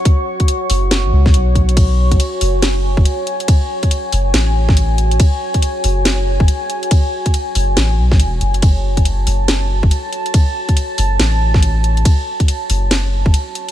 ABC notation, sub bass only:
X:1
M:4/4
L:1/16
Q:"Swing 16ths" 1/4=140
K:F#m
V:1 name="Sub bass" clef=bass
z6 F,,,3 A,,, C,,2 B,,,4- | B,,,4 z2 F,,,4- F,,, F,,, z4 | z6 F,,,2 A,,,8 | z6 F,,,4- F,,, F,,, z4 |
z6 F,,,2 A,,,2 B,,,2 E,,,2 F,,,2- | F,,,6 F,,,4- F,,, F,,, z4 | z6 F,,,2 A,,,8 | z6 F,,,4- F,,, F,,, z4 |]